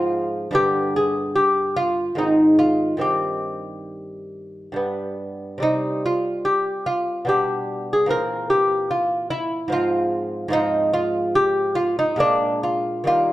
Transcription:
Already playing: G#2 F3 C4 F4
0.51 G2 D3 B3 G4
0.96 G#4
1.35 G4
1.76 F4
2.15 G#2 D#3 C4 D#4
2.59 F4
2.97 G2 D#3 C4
3.01 G4
4.72 G2 G3 B3
5.58 C3 G3 C4
5.63 D#4
6.06 F4
6.45 G4
6.86 F4
7.25 B2 G3 D4 G4
7.93 G#4
8.06 A#2 E3 C4
8.10 A#4
8.50 G4
8.91 F4
9.30 E4
9.68 G#2 F3
9.72 C4 F4
10.48 G#2 F3 C4
10.53 D#4
10.94 F4
11.35 G4
11.75 F4
11.99 D#4
12.16 A#2 G#3 A#3
12.20 D4
12.63 F4
13.04 D#3 G3 A#3 F4

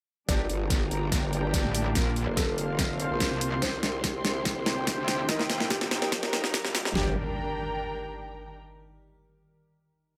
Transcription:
0.28 G1 D3 G3 A#3 D4 G4 D5, kick, snare, closed hi-hat, riser
0.35 A#3 A#5
0.49 G1, closed hi-hat
0.62 G5
0.70 kick, snare, closed hi-hat
0.91 G1, closed hi-hat
1.12 kick, snare, closed hi-hat
1.23 G1
1.33 G3 D4 G4, closed hi-hat
1.54 kick, snare, closed hi-hat
1.64 A1
1.75 open hi-hat
1.95 A#1 A#3 C4 F4 A#4, kick, snare, closed hi-hat
2.14 C6, closed hi-hat
2.27 F1
2.37 A4, kick, snare, closed hi-hat
2.49 F5
2.58 closed hi-hat
2.79 kick, snare, closed hi-hat
3.00 A#3 F4 C5, closed hi-hat
3.10 A#1
3.20 kick, snare, closed hi-hat
3.31 C2
3.41 open hi-hat
3.62 C2 C3 C4 E4 G4 C5, kick, snare, closed hi-hat
3.83 C2, snare, closed hi-hat
3.89 C5
4.04 G5, kick, snare, closed hi-hat
4.25 C2, snare, closed hi-hat
4.45 kick, snare, closed hi-hat
4.56 C2
4.66 C4 G4 C5, snare, closed hi-hat
4.87 kick, snare, closed hi-hat
4.98 D2
5.08 snare, open hi-hat
5.29 D#2 D#3 D#4 A#4 D#5, kick, snare, closed hi-hat
5.39 snare
5.47 A#4, snare, closed hi-hat
5.60 A#1, snare
5.70 G4, kick, snare, closed hi-hat
5.81 snare
5.91 snare, closed hi-hat
6.02 D#2 A#5, snare
6.12 kick, snare, closed hi-hat
6.23 snare
6.33 snare, closed hi-hat
6.44 snare
6.54 kick, snare, closed hi-hat
6.64 A#1, snare
6.75 snare, open hi-hat
6.85 D#2, snare
6.95 G1 G3 D4 G4 A#4 D5, snare, impact
7.02 A#4
7.08 G5
7.14 A#5

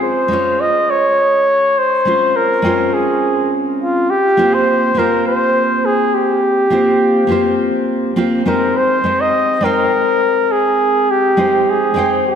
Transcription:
Already playing: G#3 C4 C#4 F4 C5
0.03 C5
0.28 G#3 C#4 F4
0.33 C#5
0.61 D#5
0.91 C#5
1.78 C5
2.05 G#3 C4 C#4 F4 C5
2.36 A#4
2.62 G#3 C4 C#4 F4
2.67 C5
2.94 G#4
3.81 F4
4.10 G4
4.37 A#3 C4 F4 G4 C5
4.54 C5
4.94 A#3 C4 F4 G4
4.98 A#4 C5
5.27 C5
5.86 G#4
6.14 G4
6.70 A#3 C4 F4 G4 C5
7.27 A#3 C4 F4 G4
7.32 C5
8.16 A#3 C4 F4 G4 C5
8.45 G#3 C4 D#4 G4 A#4 C5
8.77 C5
9.04 G#3 C4 D#4 G4 C5
9.21 D#5
9.61 G#3 C4 D#4 A#4 G5
9.65 C5
10.52 G#4
11.11 G4
11.37 G#3 C4 D#4 G4 C5
11.70 G#4
11.94 G#3 C4 D#4 G5
11.99 C5
12.28 G#4

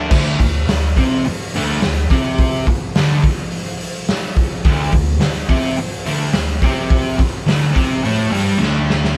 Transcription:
Already playing: D3
0.10 D2 D3, kick, crash
0.39 D2, kick, open hi-hat
0.68 D2, snare, open hi-hat
0.97 C3 C4, kick, open hi-hat
1.25 muted distorted electric guitar stroke, open hi-hat
1.54 D2 D3, open hi-hat
1.82 D2, snare, open hi-hat
2.10 C3 C4, kick, open hi-hat
2.38 kick, open hi-hat
2.67 muted distorted electric guitar stroke, kick, open hi-hat
2.95 D2 D3, snare, open hi-hat
3.24 kick, open hi-hat
3.52 open hi-hat
3.81 open hi-hat
4.08 snare, open hi-hat
4.36 kick, open hi-hat
4.65 D2 D3, kick, open hi-hat
4.92 D2, kick, open hi-hat
5.20 D2, snare, open hi-hat
5.48 C3 C4, kick, open hi-hat
5.76 muted distorted electric guitar stroke, open hi-hat
6.06 D2 D3, open hi-hat
6.33 D2, snare, open hi-hat
6.62 C3 C4, kick, open hi-hat
6.90 kick, open hi-hat
7.19 muted distorted electric guitar stroke, kick, snare, open hi-hat
7.46 D2 D3, snare, open hi-hat
7.74 C3 C4, kick, open hi-hat
8.04 A2 A3, open hi-hat
8.31 G2 G3, open hi-hat
8.58 D2 D3
8.63 snare
8.90 snare
9.04 snare

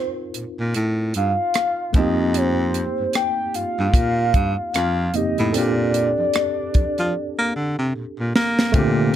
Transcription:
Already playing: C4 D#4 F4 A#4 C5
0.34 A#2, closed hi-hat
0.59 A#2
0.74 A2, closed hi-hat
1.14 G2 F5, closed hi-hat
1.54 cross-stick, closed hi-hat
1.93 F2 A3 C4 D#5, kick, closed hi-hat
1.97 A#3 D#4 G4
2.34 C5, closed hi-hat
2.74 closed hi-hat
3.00 G2
3.13 G5, cross-stick, closed hi-hat
3.54 G2 F5, closed hi-hat
3.79 G2
3.94 A#2, kick, closed hi-hat
4.34 G2, kick, closed hi-hat
4.74 F2 F5, cross-stick, closed hi-hat
5.14 A#3 C4 D#4 G4 D#5, closed hi-hat
5.38 A2, closed hi-hat
5.53 A#2 C4 A4 D5, closed hi-hat
5.57 D4 G4
5.94 closed hi-hat
6.19 F3
6.34 cross-stick, closed hi-hat
6.74 F3, kick, closed hi-hat
6.98 F3, closed hi-hat
7.39 A#3
7.56 D3
7.79 C3
7.96 A#2
8.19 A#2
8.35 A#3, snare
8.59 snare
8.72 A#2 C3 A3 C4 F4, kick, closed hi-hat, muted conga, low conga
8.77 D3 G4

